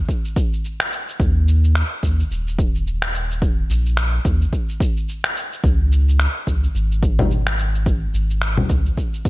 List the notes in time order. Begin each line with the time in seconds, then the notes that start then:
0.09 kick, cabasa
0.25 cabasa
0.36 kick, cabasa
0.53 cabasa
0.65 cabasa
0.80 finger snap
0.93 cabasa
1.09 cabasa
1.20 D#2, kick, cabasa
1.48 cabasa
1.64 cabasa
1.75 finger snap, cabasa
2.03 D#2, kick, cabasa
2.20 cabasa
2.31 D#1, cabasa
2.48 cabasa
2.59 kick, cabasa
2.75 cabasa
2.87 cabasa
3.02 finger snap
3.15 cabasa
3.31 cabasa
3.42 kick, cabasa
3.70 A#1, cabasa
3.86 cabasa
3.97 finger snap, cabasa
4.25 D#2, kick, cabasa
4.42 cabasa
4.53 kick, cabasa
4.69 cabasa
4.80 kick, cabasa
4.97 cabasa
5.09 cabasa
5.24 finger snap
5.37 cabasa
5.53 cabasa
5.64 C#2, kick, cabasa
5.92 cabasa
6.09 cabasa
6.20 finger snap, cabasa
6.47 C#2, kick, cabasa
6.64 cabasa
6.75 G#1, cabasa
6.92 cabasa
7.03 kick, cabasa
7.19 low conga, cabasa
7.31 cabasa
7.47 finger snap
7.59 cabasa
7.75 cabasa
7.86 kick, cabasa
8.14 G#1, cabasa
8.30 cabasa
8.42 finger snap, cabasa
8.57 low conga
8.70 C#2, kick, cabasa
8.86 cabasa
8.98 kick, cabasa
9.14 cabasa
9.25 kick, cabasa